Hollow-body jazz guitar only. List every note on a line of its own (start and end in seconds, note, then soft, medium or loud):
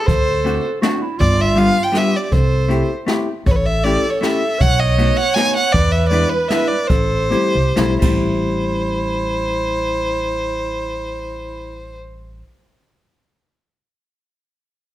0.44 0.65 A3 medium
0.44 0.65 C4 medium
0.44 0.65 D4 soft
0.44 0.66 F#4 medium
0.82 1.02 A3 medium
0.82 1.03 C4 medium
0.82 1.03 D4 medium
0.82 1.03 F#4 medium
1.56 1.76 G3 medium
1.56 1.76 B3 medium
1.56 1.77 D4 medium
1.56 1.77 F4 medium
1.92 2.13 G3 medium
1.92 2.13 B3 medium
1.92 2.14 D4 medium
1.92 2.14 F4 medium
2.68 2.89 A3 medium
2.68 2.89 C4 soft
2.68 2.90 E4 medium
2.68 2.90 G4 medium
3.06 3.27 A3 medium
3.06 3.28 C4 soft
3.06 3.28 E4 medium
3.06 3.28 G4 medium
3.84 4.04 A3 medium
3.84 4.05 C#4 soft
3.84 4.05 E4 medium
3.84 4.05 G4 medium
4.21 4.42 A3 medium
4.21 4.42 C#4 medium
4.21 4.42 E4 medium
4.21 4.43 G4 medium
4.98 5.18 A3 medium
4.98 5.18 B3 medium
4.98 5.18 D#4 soft
4.98 5.19 F#4 medium
5.36 5.56 A3 medium
5.36 5.56 B3 medium
5.36 5.56 D#4 medium
5.36 5.56 F#4 medium
6.11 6.31 G#3 medium
6.11 6.31 B3 medium
6.11 6.32 D4 medium
6.11 6.32 E4 medium
6.50 6.71 G#3 medium
6.50 6.71 B3 soft
6.50 6.71 D4 medium
6.50 6.71 E4 medium
7.31 7.54 G3 medium
7.31 7.55 A3 medium
7.31 7.55 C4 medium
7.31 7.55 E4 medium
7.76 7.98 G3 medium
7.76 8.01 A3 medium
7.76 8.02 C4 medium
7.76 8.02 E4 medium
7.99 12.38 G3 medium
7.99 12.41 A3 medium
7.99 12.42 C4 medium
8.06 12.45 E4 medium